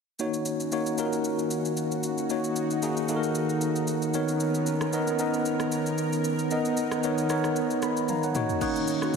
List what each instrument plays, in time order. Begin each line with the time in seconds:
0.19 analog synth pad D#3 C#4 F#4, tine electric piano A#3 D#4 F#4 C#5, shaker
0.34 shaker
0.45 shaker
0.60 shaker
0.72 tine electric piano A#3 D#4 F#4 C#5, shaker
0.86 shaker
0.98 tine electric piano A#3 D#4 F4 A#4, shaker
1.05 tine electric piano F#4
1.13 shaker
1.24 shaker
1.39 shaker
1.51 shaker
1.65 shaker
1.77 shaker
1.92 shaker
2.03 shaker
2.18 shaker
2.30 tine electric piano A#3 D#4 F#4 C#5, analog synth pad D#4, shaker
2.44 shaker
2.56 shaker
2.71 shaker
2.82 tine electric piano A#3 D#4 F#4 G#4, shaker
2.97 shaker
3.09 tine electric piano A#3 D#4 F#4 A4, shaker
3.16 tine electric piano A#4
3.23 shaker
3.35 shaker
3.49 shaker
3.61 shaker
3.76 shaker
3.87 shaker
4.02 shaker
4.14 analog synth pad B3 C#4 A#4, tine electric piano B3 D#4 A#4 C#5, shaker
4.28 shaker
4.40 shaker
4.55 shaker
4.66 shaker
4.81 cross-stick, shaker
4.93 tine electric piano B3 D#4 A#4 D#5, shaker
5.07 shaker
5.19 tine electric piano B3 D#4 A#4 D#5, shaker
5.34 shaker
5.46 shaker
5.60 cross-stick, shaker
5.72 shaker
5.86 shaker
5.98 shaker
6.13 shaker
6.24 analog synth pad D#4, shaker
6.39 shaker
6.51 tine electric piano B3 D#4 A#4 D#5, shaker
6.65 shaker
6.77 shaker
6.91 cross-stick, shaker
7.03 tine electric piano B3 D#4 A#4 C#5, shaker
7.18 shaker
7.30 tine electric piano B3 D#4 A#4 C#5, cross-stick, shaker
7.44 cross-stick, shaker
7.56 shaker
7.71 shaker
7.82 tine electric piano F#5 B5, cross-stick, shaker
7.97 shaker
8.09 tine electric piano F5 A#5, high tom, shaker
8.23 tine electric piano C#5 F#5, shaker
8.35 tine electric piano A#3 D#4 F#4 C#5, analog synth pad C#4 F#4, mid tom, shaker
8.49 floor tom, shaker
8.61 analog synth pad D#3 C#4 F#4, tine electric piano A#3 D#4 F#4 C#5, marimba C#4 D#4 F#4, kick, crash, shaker
8.76 shaker
8.88 shaker
9.02 marimba C#4 D#4 F#4, cross-stick, shaker